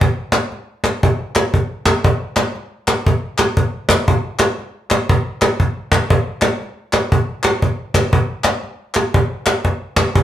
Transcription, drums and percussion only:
0.01 cajon bass loud
0.32 cajon slap loud
0.32 clap medium
0.52 cajon slap soft
0.84 cajon slap medium
0.84 clap medium
1.03 cajon bass loud
1.35 cajon slap loud
1.35 clap medium
1.54 cajon bass medium
1.54 cajon slap soft
1.85 cajon bass medium
1.85 cajon slap loud
1.85 clap loud
2.04 cajon bass loud
2.36 cajon slap loud
2.36 clap medium
2.56 cajon slap soft
2.88 cajon slap medium
2.88 clap medium
3.06 cajon bass loud
3.38 cajon slap loud
3.38 clap medium
3.57 cajon bass medium
3.57 cajon slap soft
3.89 cajon bass medium
3.89 cajon slap loud
3.89 clap loud
4.08 cajon bass loud
4.39 cajon slap medium
4.39 clap medium
4.59 cajon slap soft
4.90 cajon slap loud
4.90 clap medium
5.09 cajon bass loud
5.42 cajon slap loud
5.42 clap medium
5.60 cajon bass medium
5.60 cajon slap soft
5.92 cajon bass medium
5.92 cajon slap loud
5.92 clap medium
6.10 cajon bass loud
6.42 cajon slap loud
6.42 clap medium
6.61 cajon slap soft
6.93 cajon slap medium
6.93 clap medium
7.12 cajon bass loud
7.43 cajon slap loud
7.43 clap medium
7.62 cajon bass medium
7.62 cajon slap soft
7.94 cajon bass medium
7.94 cajon slap loud
7.94 clap loud
8.13 cajon bass loud
8.44 cajon slap loud
8.44 clap medium
8.64 cajon slap soft
8.94 cajon slap medium
8.94 clap medium
9.14 cajon bass loud
9.46 cajon slap loud
9.46 clap medium
9.65 cajon bass medium
9.65 cajon slap soft
9.96 cajon bass medium
9.96 cajon slap loud
9.96 clap loud
10.15 cajon bass loud

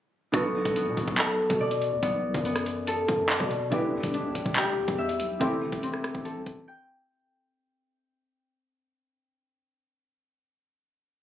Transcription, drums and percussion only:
0.34 kick loud
0.34 closed hi-hat medium
0.65 kick loud
0.65 closed hi-hat medium
0.76 closed hi-hat medium
0.97 closed hi-hat medium
1.08 kick medium
1.18 clap loud
1.50 kick loud
1.50 closed hi-hat medium
1.71 closed hi-hat medium
1.82 closed hi-hat medium
2.03 kick loud
2.03 closed hi-hat medium
2.34 kick loud
2.34 closed hi-hat medium
2.45 closed hi-hat medium
2.56 cross-stick medium
2.56 closed hi-hat medium
2.66 closed hi-hat medium
2.87 closed hi-hat medium
3.08 closed hi-hat medium
3.30 clap loud
3.40 kick loud
3.51 closed hi-hat medium
3.72 kick loud
3.72 closed hi-hat medium
4.03 kick loud
4.03 closed hi-hat medium
4.14 closed hi-hat medium
4.35 closed hi-hat medium
4.46 kick medium
4.56 clap loud
4.88 kick medium
4.88 closed hi-hat medium
5.09 closed hi-hat medium
5.20 closed hi-hat medium
5.41 kick loud
5.41 closed hi-hat medium
5.72 kick loud
5.72 closed hi-hat medium
5.83 closed hi-hat medium
5.94 cross-stick medium
6.04 cross-stick medium
6.04 closed hi-hat medium
6.15 kick medium
6.25 closed hi-hat medium
6.46 kick loud
6.46 closed hi-hat medium

